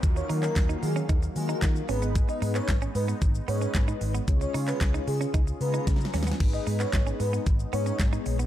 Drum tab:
CC |------------------------------------------------|------------------------------------------------|------------------------------------------------|x-----------------------------------------------|
HH |x-----o-----x-----o-----x-----o-----x-----o-----|x-----o-----x-----o-----x-----o-----x-----o-----|x-----o-----x-----o-----x-----o-----x-----o-----|------o-----x-----o-----x-----o-----x-----o-----|
SH |x--x--x--x--x--x--x--x--x--x--x--x--x--x--x--x--|x--x--x--x--x--x--x--x--x--x--x--x--x--x--x--x--|x--x--x--x--x--x--x--x--x--x--x--x--x--x--x--x--|---x--x--x--x--x--x--x--x--x--x--x--x--x--x--x--|
CP |---------x--x-----------------------x-----------|---------x--x-----------------------x-----------|---------x--x-----------------------------------|---------x--x-----------------------x-----------|
SD |------------o-----------------------o-----------|------------o-----------------------o-----------|------------o-----------------------o-o-o-o-o-o-|------------o-----------------------o-----------|
BD |o-----------o-----------o-----------o-----------|o-----------o-----------o-----------o-----------|o-----------o-----------o-----------o-----------|o-----------o-----------o-----------o-----------|